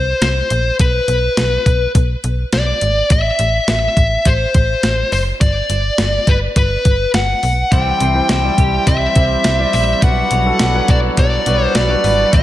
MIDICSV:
0, 0, Header, 1, 7, 480
1, 0, Start_track
1, 0, Tempo, 576923
1, 661, Time_signature, 4, 2, 24, 8
1, 10341, End_track
2, 0, Start_track
2, 0, Title_t, "Pipe organ"
2, 0, Program_c, 0, 19
2, 6420, Note_on_c, 0, 64, 68
2, 6422, Note_on_c, 0, 76, 62
2, 6422, Note_on_c, 0, 84, 70
2, 6423, Note_on_c, 0, 72, 57
2, 8322, Note_off_c, 0, 72, 0
2, 8322, Note_off_c, 0, 76, 0
2, 8322, Note_off_c, 0, 84, 0
2, 8336, Note_on_c, 0, 74, 61
2, 8336, Note_on_c, 0, 78, 59
2, 8336, Note_on_c, 0, 83, 71
2, 10227, Note_off_c, 0, 64, 0
2, 10239, Note_off_c, 0, 74, 0
2, 10239, Note_off_c, 0, 78, 0
2, 10239, Note_off_c, 0, 83, 0
2, 10255, Note_on_c, 0, 69, 70
2, 10255, Note_on_c, 0, 72, 58
2, 10256, Note_on_c, 0, 76, 60
2, 10256, Note_on_c, 0, 84, 72
2, 10341, Note_off_c, 0, 69, 0
2, 10341, Note_off_c, 0, 72, 0
2, 10341, Note_off_c, 0, 76, 0
2, 10341, Note_off_c, 0, 84, 0
2, 10341, End_track
3, 0, Start_track
3, 0, Title_t, "Lead electric guitar"
3, 0, Program_c, 1, 29
3, 0, Note_on_c, 1, 72, 84
3, 176, Note_off_c, 1, 72, 0
3, 186, Note_on_c, 1, 72, 89
3, 630, Note_off_c, 1, 72, 0
3, 669, Note_on_c, 1, 71, 73
3, 1591, Note_off_c, 1, 71, 0
3, 2110, Note_on_c, 1, 74, 85
3, 2552, Note_off_c, 1, 74, 0
3, 2595, Note_on_c, 1, 76, 91
3, 3063, Note_off_c, 1, 76, 0
3, 3073, Note_on_c, 1, 76, 85
3, 3550, Note_on_c, 1, 72, 84
3, 3561, Note_off_c, 1, 76, 0
3, 4255, Note_off_c, 1, 72, 0
3, 4265, Note_on_c, 1, 72, 84
3, 4329, Note_off_c, 1, 72, 0
3, 4499, Note_on_c, 1, 74, 89
3, 5233, Note_on_c, 1, 71, 81
3, 5242, Note_off_c, 1, 74, 0
3, 5296, Note_off_c, 1, 71, 0
3, 5468, Note_on_c, 1, 71, 84
3, 5911, Note_off_c, 1, 71, 0
3, 5948, Note_on_c, 1, 78, 92
3, 6427, Note_off_c, 1, 78, 0
3, 6431, Note_on_c, 1, 79, 96
3, 6905, Note_off_c, 1, 79, 0
3, 6915, Note_on_c, 1, 79, 94
3, 7386, Note_on_c, 1, 76, 94
3, 7402, Note_off_c, 1, 79, 0
3, 8095, Note_off_c, 1, 76, 0
3, 8105, Note_on_c, 1, 76, 89
3, 8326, Note_off_c, 1, 76, 0
3, 8348, Note_on_c, 1, 78, 101
3, 9068, Note_on_c, 1, 74, 89
3, 9086, Note_off_c, 1, 78, 0
3, 9131, Note_off_c, 1, 74, 0
3, 9308, Note_on_c, 1, 74, 82
3, 9691, Note_off_c, 1, 74, 0
3, 9691, Note_on_c, 1, 72, 82
3, 9779, Note_off_c, 1, 72, 0
3, 9789, Note_on_c, 1, 74, 88
3, 10265, Note_off_c, 1, 74, 0
3, 10268, Note_on_c, 1, 76, 92
3, 10341, Note_off_c, 1, 76, 0
3, 10341, End_track
4, 0, Start_track
4, 0, Title_t, "Grand piano"
4, 0, Program_c, 2, 0
4, 6416, Note_on_c, 2, 55, 70
4, 6418, Note_on_c, 2, 60, 64
4, 6421, Note_on_c, 2, 64, 63
4, 6425, Note_on_c, 2, 72, 73
4, 6581, Control_c, 2, 64, 127
4, 6642, Note_off_c, 2, 55, 0
4, 6644, Note_off_c, 2, 60, 0
4, 6645, Note_off_c, 2, 64, 0
4, 6647, Note_off_c, 2, 72, 0
4, 6774, Note_on_c, 2, 55, 69
4, 6779, Note_on_c, 2, 60, 60
4, 6781, Note_on_c, 2, 64, 63
4, 6786, Note_on_c, 2, 72, 76
4, 6927, Note_off_c, 2, 55, 0
4, 6929, Note_off_c, 2, 60, 0
4, 6930, Note_off_c, 2, 64, 0
4, 6933, Note_off_c, 2, 72, 0
4, 7019, Note_on_c, 2, 55, 69
4, 7023, Note_on_c, 2, 60, 66
4, 7025, Note_on_c, 2, 64, 68
4, 7029, Note_on_c, 2, 74, 81
4, 7394, Note_off_c, 2, 55, 0
4, 7396, Note_off_c, 2, 60, 0
4, 7397, Note_off_c, 2, 64, 0
4, 7399, Note_off_c, 2, 74, 0
4, 7618, Note_on_c, 2, 55, 68
4, 7620, Note_on_c, 2, 60, 63
4, 7623, Note_on_c, 2, 64, 65
4, 7626, Note_on_c, 2, 72, 77
4, 7844, Note_off_c, 2, 55, 0
4, 7845, Note_off_c, 2, 60, 0
4, 7846, Note_off_c, 2, 64, 0
4, 7848, Note_off_c, 2, 72, 0
4, 7978, Note_on_c, 2, 55, 69
4, 7981, Note_on_c, 2, 60, 65
4, 7985, Note_on_c, 2, 64, 65
4, 7988, Note_on_c, 2, 74, 78
4, 8204, Note_off_c, 2, 55, 0
4, 8205, Note_off_c, 2, 60, 0
4, 8207, Note_off_c, 2, 64, 0
4, 8209, Note_off_c, 2, 74, 0
4, 8338, Note_on_c, 2, 55, 68
4, 8341, Note_on_c, 2, 62, 61
4, 8344, Note_on_c, 2, 66, 64
4, 8347, Note_on_c, 2, 71, 80
4, 8353, Control_c, 2, 64, 0
4, 8481, Control_c, 2, 64, 127
4, 8564, Note_off_c, 2, 55, 0
4, 8565, Note_off_c, 2, 62, 0
4, 8567, Note_off_c, 2, 66, 0
4, 8568, Note_off_c, 2, 71, 0
4, 8696, Note_on_c, 2, 55, 69
4, 8699, Note_on_c, 2, 62, 61
4, 8703, Note_on_c, 2, 66, 58
4, 8707, Note_on_c, 2, 69, 75
4, 8848, Note_off_c, 2, 55, 0
4, 8849, Note_off_c, 2, 62, 0
4, 8851, Note_off_c, 2, 66, 0
4, 8853, Note_off_c, 2, 69, 0
4, 8936, Note_on_c, 2, 54, 77
4, 8940, Note_on_c, 2, 62, 65
4, 8945, Note_on_c, 2, 66, 65
4, 8946, Note_on_c, 2, 71, 81
4, 9312, Note_off_c, 2, 54, 0
4, 9314, Note_off_c, 2, 62, 0
4, 9317, Note_off_c, 2, 66, 0
4, 9317, Note_off_c, 2, 71, 0
4, 9536, Note_on_c, 2, 55, 74
4, 9539, Note_on_c, 2, 62, 66
4, 9542, Note_on_c, 2, 66, 66
4, 9547, Note_on_c, 2, 71, 81
4, 9763, Note_off_c, 2, 55, 0
4, 9764, Note_off_c, 2, 62, 0
4, 9765, Note_off_c, 2, 66, 0
4, 9768, Note_off_c, 2, 71, 0
4, 9892, Note_on_c, 2, 55, 72
4, 9896, Note_on_c, 2, 62, 66
4, 9900, Note_on_c, 2, 66, 67
4, 9901, Note_on_c, 2, 71, 82
4, 10120, Note_off_c, 2, 55, 0
4, 10123, Note_off_c, 2, 62, 0
4, 10124, Note_off_c, 2, 66, 0
4, 10125, Note_off_c, 2, 71, 0
4, 10255, Note_on_c, 2, 57, 73
4, 10259, Note_on_c, 2, 60, 62
4, 10261, Note_on_c, 2, 64, 65
4, 10267, Note_on_c, 2, 72, 80
4, 10269, Control_c, 2, 64, 0
4, 10341, Note_off_c, 2, 57, 0
4, 10341, Note_off_c, 2, 60, 0
4, 10341, Note_off_c, 2, 64, 0
4, 10341, Note_off_c, 2, 72, 0
4, 10341, End_track
5, 0, Start_track
5, 0, Title_t, "Clean electric guitar"
5, 0, Program_c, 3, 27
5, 6423, Note_on_c, 3, 52, 81
5, 6661, Note_on_c, 3, 60, 56
5, 6902, Note_on_c, 3, 64, 60
5, 7141, Note_on_c, 3, 67, 61
5, 7369, Note_off_c, 3, 60, 0
5, 7379, Note_on_c, 3, 60, 67
5, 7611, Note_off_c, 3, 64, 0
5, 7621, Note_on_c, 3, 64, 58
5, 7852, Note_off_c, 3, 60, 0
5, 7862, Note_on_c, 3, 60, 59
5, 8092, Note_off_c, 3, 64, 0
5, 8102, Note_on_c, 3, 64, 55
5, 8338, Note_off_c, 3, 52, 0
5, 8341, Note_on_c, 3, 54, 75
5, 8389, Note_off_c, 3, 60, 0
5, 8389, Note_off_c, 3, 64, 0
5, 8572, Note_off_c, 3, 54, 0
5, 8582, Note_on_c, 3, 54, 59
5, 8607, Note_off_c, 3, 67, 0
5, 8819, Note_on_c, 3, 59, 65
5, 9060, Note_on_c, 3, 62, 63
5, 9291, Note_off_c, 3, 54, 0
5, 9301, Note_on_c, 3, 54, 65
5, 9529, Note_off_c, 3, 59, 0
5, 9539, Note_on_c, 3, 59, 57
5, 9770, Note_off_c, 3, 54, 0
5, 9779, Note_on_c, 3, 54, 62
5, 10009, Note_off_c, 3, 59, 0
5, 10019, Note_on_c, 3, 59, 54
5, 10256, Note_off_c, 3, 54, 0
5, 10259, Note_on_c, 3, 52, 86
5, 10308, Note_off_c, 3, 59, 0
5, 10308, Note_off_c, 3, 62, 0
5, 10341, Note_off_c, 3, 52, 0
5, 10341, End_track
6, 0, Start_track
6, 0, Title_t, "FM bass"
6, 0, Program_c, 4, 39
6, 0, Note_on_c, 4, 36, 98
6, 115, Note_off_c, 4, 36, 0
6, 179, Note_on_c, 4, 36, 95
6, 352, Note_off_c, 4, 36, 0
6, 421, Note_on_c, 4, 34, 97
6, 594, Note_off_c, 4, 34, 0
6, 662, Note_on_c, 4, 35, 100
6, 834, Note_off_c, 4, 35, 0
6, 898, Note_on_c, 4, 35, 97
6, 1072, Note_off_c, 4, 35, 0
6, 1142, Note_on_c, 4, 35, 110
6, 1314, Note_off_c, 4, 35, 0
6, 1381, Note_on_c, 4, 35, 101
6, 1553, Note_off_c, 4, 35, 0
6, 1622, Note_on_c, 4, 35, 109
6, 1794, Note_off_c, 4, 35, 0
6, 1864, Note_on_c, 4, 35, 93
6, 2035, Note_off_c, 4, 35, 0
6, 2102, Note_on_c, 4, 35, 99
6, 2274, Note_off_c, 4, 35, 0
6, 2344, Note_on_c, 4, 32, 89
6, 2516, Note_off_c, 4, 32, 0
6, 2584, Note_on_c, 4, 33, 103
6, 2755, Note_off_c, 4, 33, 0
6, 2822, Note_on_c, 4, 33, 101
6, 2994, Note_off_c, 4, 33, 0
6, 3059, Note_on_c, 4, 33, 101
6, 3232, Note_off_c, 4, 33, 0
6, 3301, Note_on_c, 4, 33, 98
6, 3474, Note_off_c, 4, 33, 0
6, 3541, Note_on_c, 4, 33, 113
6, 3713, Note_off_c, 4, 33, 0
6, 3782, Note_on_c, 4, 33, 105
6, 3955, Note_off_c, 4, 33, 0
6, 4021, Note_on_c, 4, 33, 91
6, 4194, Note_off_c, 4, 33, 0
6, 4261, Note_on_c, 4, 30, 86
6, 4434, Note_off_c, 4, 30, 0
6, 4502, Note_on_c, 4, 31, 105
6, 4674, Note_off_c, 4, 31, 0
6, 4738, Note_on_c, 4, 31, 94
6, 4912, Note_off_c, 4, 31, 0
6, 4977, Note_on_c, 4, 31, 97
6, 5151, Note_off_c, 4, 31, 0
6, 5219, Note_on_c, 4, 31, 102
6, 5393, Note_off_c, 4, 31, 0
6, 5460, Note_on_c, 4, 31, 111
6, 5633, Note_off_c, 4, 31, 0
6, 5703, Note_on_c, 4, 31, 94
6, 5875, Note_off_c, 4, 31, 0
6, 5938, Note_on_c, 4, 31, 92
6, 6112, Note_off_c, 4, 31, 0
6, 6183, Note_on_c, 4, 35, 90
6, 6355, Note_off_c, 4, 35, 0
6, 6421, Note_on_c, 4, 36, 100
6, 6594, Note_off_c, 4, 36, 0
6, 6662, Note_on_c, 4, 36, 96
6, 6834, Note_off_c, 4, 36, 0
6, 6901, Note_on_c, 4, 36, 99
6, 7073, Note_off_c, 4, 36, 0
6, 7139, Note_on_c, 4, 36, 101
6, 7312, Note_off_c, 4, 36, 0
6, 7379, Note_on_c, 4, 36, 100
6, 7552, Note_off_c, 4, 36, 0
6, 7620, Note_on_c, 4, 36, 101
6, 7793, Note_off_c, 4, 36, 0
6, 7860, Note_on_c, 4, 36, 99
6, 8033, Note_off_c, 4, 36, 0
6, 8102, Note_on_c, 4, 34, 98
6, 8274, Note_off_c, 4, 34, 0
6, 8338, Note_on_c, 4, 35, 105
6, 8512, Note_off_c, 4, 35, 0
6, 8579, Note_on_c, 4, 35, 99
6, 8752, Note_off_c, 4, 35, 0
6, 8820, Note_on_c, 4, 35, 109
6, 8993, Note_off_c, 4, 35, 0
6, 9056, Note_on_c, 4, 35, 103
6, 9231, Note_off_c, 4, 35, 0
6, 9298, Note_on_c, 4, 35, 106
6, 9472, Note_off_c, 4, 35, 0
6, 9538, Note_on_c, 4, 35, 97
6, 9712, Note_off_c, 4, 35, 0
6, 9777, Note_on_c, 4, 35, 102
6, 9951, Note_off_c, 4, 35, 0
6, 10018, Note_on_c, 4, 32, 95
6, 10192, Note_off_c, 4, 32, 0
6, 10259, Note_on_c, 4, 33, 101
6, 10341, Note_off_c, 4, 33, 0
6, 10341, End_track
7, 0, Start_track
7, 0, Title_t, "Drums"
7, 181, Note_on_c, 9, 42, 72
7, 183, Note_on_c, 9, 38, 102
7, 264, Note_off_c, 9, 42, 0
7, 266, Note_off_c, 9, 38, 0
7, 419, Note_on_c, 9, 42, 62
7, 502, Note_off_c, 9, 42, 0
7, 661, Note_on_c, 9, 36, 94
7, 661, Note_on_c, 9, 42, 93
7, 744, Note_off_c, 9, 36, 0
7, 744, Note_off_c, 9, 42, 0
7, 899, Note_on_c, 9, 42, 69
7, 983, Note_off_c, 9, 42, 0
7, 1143, Note_on_c, 9, 38, 103
7, 1144, Note_on_c, 9, 42, 90
7, 1226, Note_off_c, 9, 38, 0
7, 1227, Note_off_c, 9, 42, 0
7, 1382, Note_on_c, 9, 36, 82
7, 1383, Note_on_c, 9, 42, 65
7, 1465, Note_off_c, 9, 36, 0
7, 1467, Note_off_c, 9, 42, 0
7, 1622, Note_on_c, 9, 36, 79
7, 1623, Note_on_c, 9, 42, 89
7, 1705, Note_off_c, 9, 36, 0
7, 1706, Note_off_c, 9, 42, 0
7, 1862, Note_on_c, 9, 42, 68
7, 1945, Note_off_c, 9, 42, 0
7, 2101, Note_on_c, 9, 42, 74
7, 2103, Note_on_c, 9, 38, 100
7, 2184, Note_off_c, 9, 42, 0
7, 2186, Note_off_c, 9, 38, 0
7, 2341, Note_on_c, 9, 42, 67
7, 2424, Note_off_c, 9, 42, 0
7, 2580, Note_on_c, 9, 42, 92
7, 2582, Note_on_c, 9, 36, 97
7, 2663, Note_off_c, 9, 42, 0
7, 2665, Note_off_c, 9, 36, 0
7, 2819, Note_on_c, 9, 42, 70
7, 2902, Note_off_c, 9, 42, 0
7, 3061, Note_on_c, 9, 38, 106
7, 3062, Note_on_c, 9, 42, 94
7, 3144, Note_off_c, 9, 38, 0
7, 3146, Note_off_c, 9, 42, 0
7, 3301, Note_on_c, 9, 36, 78
7, 3303, Note_on_c, 9, 42, 62
7, 3384, Note_off_c, 9, 36, 0
7, 3386, Note_off_c, 9, 42, 0
7, 3539, Note_on_c, 9, 42, 82
7, 3540, Note_on_c, 9, 36, 74
7, 3622, Note_off_c, 9, 42, 0
7, 3623, Note_off_c, 9, 36, 0
7, 3781, Note_on_c, 9, 42, 63
7, 3783, Note_on_c, 9, 36, 84
7, 3864, Note_off_c, 9, 42, 0
7, 3866, Note_off_c, 9, 36, 0
7, 4021, Note_on_c, 9, 42, 80
7, 4022, Note_on_c, 9, 38, 97
7, 4104, Note_off_c, 9, 42, 0
7, 4106, Note_off_c, 9, 38, 0
7, 4261, Note_on_c, 9, 46, 63
7, 4344, Note_off_c, 9, 46, 0
7, 4501, Note_on_c, 9, 36, 102
7, 4502, Note_on_c, 9, 42, 92
7, 4584, Note_off_c, 9, 36, 0
7, 4585, Note_off_c, 9, 42, 0
7, 4739, Note_on_c, 9, 42, 67
7, 4822, Note_off_c, 9, 42, 0
7, 4978, Note_on_c, 9, 38, 106
7, 4979, Note_on_c, 9, 42, 92
7, 5061, Note_off_c, 9, 38, 0
7, 5062, Note_off_c, 9, 42, 0
7, 5218, Note_on_c, 9, 36, 83
7, 5218, Note_on_c, 9, 42, 62
7, 5301, Note_off_c, 9, 36, 0
7, 5301, Note_off_c, 9, 42, 0
7, 5458, Note_on_c, 9, 42, 88
7, 5459, Note_on_c, 9, 36, 78
7, 5541, Note_off_c, 9, 42, 0
7, 5542, Note_off_c, 9, 36, 0
7, 5700, Note_on_c, 9, 42, 68
7, 5701, Note_on_c, 9, 36, 89
7, 5783, Note_off_c, 9, 42, 0
7, 5785, Note_off_c, 9, 36, 0
7, 5940, Note_on_c, 9, 42, 76
7, 5942, Note_on_c, 9, 38, 106
7, 6024, Note_off_c, 9, 42, 0
7, 6025, Note_off_c, 9, 38, 0
7, 6181, Note_on_c, 9, 46, 65
7, 6264, Note_off_c, 9, 46, 0
7, 6420, Note_on_c, 9, 36, 102
7, 6421, Note_on_c, 9, 42, 93
7, 6504, Note_off_c, 9, 36, 0
7, 6504, Note_off_c, 9, 42, 0
7, 6660, Note_on_c, 9, 42, 69
7, 6743, Note_off_c, 9, 42, 0
7, 6899, Note_on_c, 9, 38, 111
7, 6900, Note_on_c, 9, 42, 95
7, 6982, Note_off_c, 9, 38, 0
7, 6983, Note_off_c, 9, 42, 0
7, 7138, Note_on_c, 9, 36, 78
7, 7140, Note_on_c, 9, 42, 68
7, 7222, Note_off_c, 9, 36, 0
7, 7223, Note_off_c, 9, 42, 0
7, 7379, Note_on_c, 9, 36, 77
7, 7379, Note_on_c, 9, 42, 88
7, 7462, Note_off_c, 9, 36, 0
7, 7462, Note_off_c, 9, 42, 0
7, 7617, Note_on_c, 9, 42, 66
7, 7620, Note_on_c, 9, 36, 85
7, 7700, Note_off_c, 9, 42, 0
7, 7704, Note_off_c, 9, 36, 0
7, 7856, Note_on_c, 9, 42, 75
7, 7858, Note_on_c, 9, 38, 98
7, 7939, Note_off_c, 9, 42, 0
7, 7941, Note_off_c, 9, 38, 0
7, 8097, Note_on_c, 9, 46, 69
7, 8180, Note_off_c, 9, 46, 0
7, 8339, Note_on_c, 9, 36, 105
7, 8339, Note_on_c, 9, 42, 94
7, 8422, Note_off_c, 9, 36, 0
7, 8422, Note_off_c, 9, 42, 0
7, 8575, Note_on_c, 9, 42, 72
7, 8658, Note_off_c, 9, 42, 0
7, 8815, Note_on_c, 9, 38, 112
7, 8816, Note_on_c, 9, 42, 96
7, 8898, Note_off_c, 9, 38, 0
7, 8899, Note_off_c, 9, 42, 0
7, 9055, Note_on_c, 9, 42, 68
7, 9057, Note_on_c, 9, 36, 82
7, 9138, Note_off_c, 9, 42, 0
7, 9140, Note_off_c, 9, 36, 0
7, 9297, Note_on_c, 9, 36, 76
7, 9297, Note_on_c, 9, 42, 83
7, 9380, Note_off_c, 9, 36, 0
7, 9380, Note_off_c, 9, 42, 0
7, 9536, Note_on_c, 9, 42, 68
7, 9619, Note_off_c, 9, 42, 0
7, 9775, Note_on_c, 9, 42, 78
7, 9777, Note_on_c, 9, 38, 105
7, 9859, Note_off_c, 9, 42, 0
7, 9860, Note_off_c, 9, 38, 0
7, 10018, Note_on_c, 9, 46, 64
7, 10101, Note_off_c, 9, 46, 0
7, 10258, Note_on_c, 9, 36, 107
7, 10258, Note_on_c, 9, 42, 96
7, 10341, Note_off_c, 9, 36, 0
7, 10341, Note_off_c, 9, 42, 0
7, 10341, End_track
0, 0, End_of_file